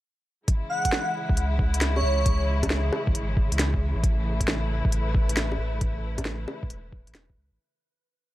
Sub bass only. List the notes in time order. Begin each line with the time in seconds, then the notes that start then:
1.29 C#2
2.03 C#2
3.07 C#2
3.15 G#1
3.52 C#2
3.96 A1
4.85 A1
5.58 A1
6.63 A1
6.70 E1
7.07 A1
7.15 E1
7.37 C#2
7.52 A1